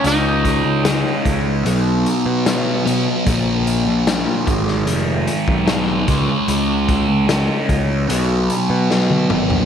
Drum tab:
HH |x-x-x-x-x-x-x-x-|x-x-x-x-x-x-x-x-|x-x-x-x-x-x-----|
SD |----o-------o---|----o--o----o---|----o-------o---|
T1 |----------------|----------------|-------------o--|
T2 |----------------|----------------|--------------o-|
FT |----------------|----------------|---------------o|
BD |--o---o---------|o-----o----o--o-|--o---o---------|